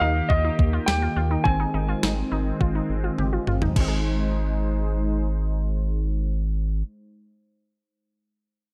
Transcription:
Already playing: D#3 A#3 G4
0.00 D#2 D#4 F5
0.29 D#2 F4 D#5, kick
0.44 D#4
0.59 D#2, kick
0.73 F4
0.86 D#2 G4 G5, snare
1.02 F4
1.16 D#2 F4
1.31 D#4
1.44 G#1 G#3 C4 G#5, kick
1.60 D#4
1.74 G#1 D#4
1.88 F4
2.03 G#1 D#4, snare
2.32 G#1 D#4
2.61 G#1 F4, kick
2.75 D#4
2.90 G#1
3.04 F4
3.18 G#1 G4, high tom
3.33 F4
3.47 G#1 F4, mid tom
3.62 D#4, floor tom
3.76 G#1 G#3 D#4 C5, kick, crash
3.80 C4 D#4
3.88 G#4

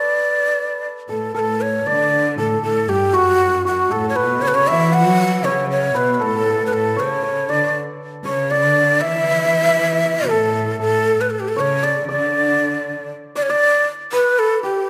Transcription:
Already playing: A4 B4 D5
1.09 A2 A4
1.34 A2 A4 A#4
1.39 A4
1.61 C#5
1.87 D3 D5
2.38 A2 A4
2.63 A2 A4
2.88 G2 G4
3.13 F#2 F#4
3.65 F#4
3.90 A2 A4
4.09 C#5
4.16 B2 B4
4.41 C#3 C#5
4.48 B4
4.55 C#3 C#5
4.67 E3 E5
4.74 D5
4.79 E5
4.92 F#3 F#5
5.44 C#3 C#5
5.71 C#5
5.94 B2 B4
6.14 B4
6.20 A2 A4
6.26 A4
6.35 A4
6.44 A4
6.50 A4
6.58 A4
6.66 B4
6.71 A2 A4
6.96 C#3 C#5
7.23 C#5
7.49 D3 D5
8.25 C#3 C#5
8.51 C#3 D5
8.62 D3
9.01 E3 E5
9.08 E5
9.16 E5
9.24 E5
9.32 E5
9.39 E5
9.45 E5
9.53 E5
9.62 E5
9.69 E5
9.77 E5
9.85 E5
9.93 E5
9.98 E5
10.06 E5
10.13 E5
10.22 B2
10.29 A2 A4
10.79 A2 A4
11.21 B4
11.30 A4
11.40 G4
11.49 A4
11.56 C#3 C#5
11.83 D5
12.08 C#3 D5
12.19 D3
13.36 D5
13.42 C#5
13.49 D5
14.12 B4
14.39 A4
14.63 G4

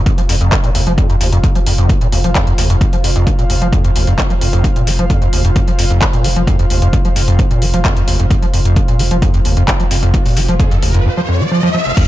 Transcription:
Already playing: F4 C5 F5
0.06 F2, kick, closed hi-hat
0.18 F1 F3, closed hi-hat
0.29 F1 F2, open hi-hat
0.41 F1 F2, closed hi-hat
0.52 G#2, kick, clap, closed hi-hat
0.64 F1 A#2, closed hi-hat
0.75 F1 D#2, open hi-hat
0.87 F1 F3, closed hi-hat
0.98 F2, kick, closed hi-hat
1.09 F1 F2, closed hi-hat
1.21 F1 D#2, open hi-hat
1.32 F1 F2, closed hi-hat
1.44 F2, kick, closed hi-hat
1.55 F1 F3, closed hi-hat
1.66 F1 F2, open hi-hat
1.78 F1 F2, closed hi-hat
1.89 G#2, kick, closed hi-hat
2.01 F1 A#2, closed hi-hat
2.12 F1 D#2, open hi-hat
2.24 F1 F3, closed hi-hat
2.35 F2, kick, clap, closed hi-hat
2.47 F1 F2, closed hi-hat
2.58 F1 D#2, open hi-hat
2.70 F1 F2, closed hi-hat
2.81 F2, kick, closed hi-hat
2.93 F1 F3, closed hi-hat
3.04 F1 F2, open hi-hat
3.16 F1 F2, closed hi-hat
3.27 G#2, kick, closed hi-hat
3.39 F1 A#2, closed hi-hat
3.50 F1 D#2, open hi-hat
3.61 F1 F3, closed hi-hat
3.73 F2, kick, closed hi-hat
3.84 F1 F2, closed hi-hat
3.95 F1 D#2, open hi-hat
4.07 F1 F2, closed hi-hat
4.18 F2, kick, clap, closed hi-hat
4.30 F1 F3, closed hi-hat
4.41 F1 F2, open hi-hat
4.53 F1 F2, closed hi-hat
4.64 G#2, kick, closed hi-hat
4.76 F1 A#2, closed hi-hat
4.87 F1 F3, open hi-hat
4.99 F1 F3, closed hi-hat
5.10 F2, kick, closed hi-hat
5.22 F1 F2, closed hi-hat
5.33 F1 D#2, open hi-hat
5.45 F1 F2, closed hi-hat
5.56 F2, kick, closed hi-hat
5.68 F1 F3, closed hi-hat
5.79 F1 F2, open hi-hat
5.90 F1 F2, closed hi-hat
6.02 G#2, kick, clap, closed hi-hat
6.13 F1 A#2, closed hi-hat
6.24 F1 F3, open hi-hat
6.36 F1 F3, closed hi-hat
6.47 F2, kick, closed hi-hat
6.59 F1 F2, closed hi-hat
6.70 F1 D#2, open hi-hat
6.82 F1 F2, closed hi-hat
6.93 F2, kick, closed hi-hat
7.05 F1 F3, closed hi-hat
7.16 F1 F2, open hi-hat
7.28 F1 F2, closed hi-hat
7.39 G#2, kick, closed hi-hat
7.51 F1 A#2, closed hi-hat
7.62 F1 F3, open hi-hat
7.73 F1 F3, closed hi-hat
7.85 F2, kick, clap, closed hi-hat
7.96 F1 F2, closed hi-hat
8.08 F1 D#2, open hi-hat
8.19 F1 F2, closed hi-hat
8.30 F2, kick, closed hi-hat, riser
8.42 F1 F3, closed hi-hat
8.53 F1 F2, open hi-hat
8.65 F1 F2, closed hi-hat
8.76 G#2, kick, closed hi-hat
8.88 F1 A#2, closed hi-hat
8.99 F1 F3, open hi-hat
9.11 F1 F3, closed hi-hat
9.22 F2, kick, closed hi-hat
9.34 F1 F2, closed hi-hat
9.45 F1 D#2, open hi-hat
9.57 F1 F2, closed hi-hat
9.68 F2, kick, clap, closed hi-hat
9.80 F1 F3, closed hi-hat
9.91 F1 F2, open hi-hat
10.03 F1 F2, closed hi-hat
10.14 G#2, kick, closed hi-hat
10.25 F1 A#2, open hi-hat
10.37 F1 F3, open hi-hat
10.48 F1 F3, closed hi-hat
10.60 F2, kick, closed hi-hat
10.71 F1 F2, closed hi-hat
10.82 F1 D#2, open hi-hat
10.94 F1 F2, closed hi-hat
11.06 F2
11.17 F3
11.29 F2
11.40 F3
11.51 F3
11.63 F3
11.74 F3
11.86 F1
11.97 F2, kick, closed hi-hat, crash, sub drop

